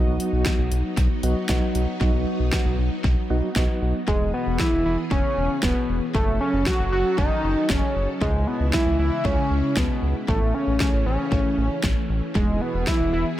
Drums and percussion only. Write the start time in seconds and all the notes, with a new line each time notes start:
0.20 closed hi-hat
0.45 kick, snare, closed hi-hat
0.72 closed hi-hat
0.97 kick, closed hi-hat
1.23 closed hi-hat
1.49 kick, snare, closed hi-hat
1.75 closed hi-hat
2.01 kick
2.53 kick, snare
3.04 kick
3.56 kick, snare
4.08 kick
4.59 kick, snare
5.11 kick
5.63 kick, snare
6.15 kick
6.66 kick, snare
7.18 kick
7.70 kick, snare
8.21 kick
8.73 kick, snare
9.25 kick
9.77 kick, snare
10.28 kick
10.80 kick, snare
11.32 kick
11.84 kick, snare
12.35 kick
12.87 kick, snare